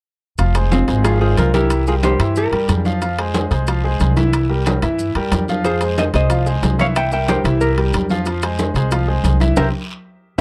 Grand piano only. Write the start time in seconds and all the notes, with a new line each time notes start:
0.38 F3 F4 F5
0.55 G#3 G#4 C5
0.88 G#3 G#4 C5
1.05 F3 F4 F5
1.21 G#3 G#4 C5
1.54 E3 E4 E5
1.87 G3 G4 A#4
2.04 G3 G4 A#4
2.20 E3 E4 E5
2.53 G3 G4 A#4
2.85 F3 F4 F5
3.02 F3 F4 F5
3.19 G#3 G#4 C5
3.51 G#3 G#4 C5
3.68 F3 F4 F5
3.84 G#3 G#4 C5
4.16 E3 E4 E5
4.49 G3 G4 A#4
4.66 G3 G4 A#4
4.82 E3 E4 E5
5.16 G3 G4 A#4
5.49 F3 F4 F5
5.64 F3 F4 F5
5.81 G#3 G#4 C5
6.14 G#3 G#4 C5
6.30 F3 F4 F5
6.46 G#3 G#4 C5
6.79 E3 E4 E5
7.12 G3 G4 A#4
7.28 G3 G4 A#4
7.44 E3 E4 E5
7.77 G3 G4 A#4
8.10 F3 F4 F5
8.26 F3 F4 F5
8.43 G#3 G#4 C5
8.76 G#3 G#4 C5
8.92 F3 F4 F5
9.08 G#3 G#4 C5
9.40 E3 E4 E5
9.57 G4 A#4 C5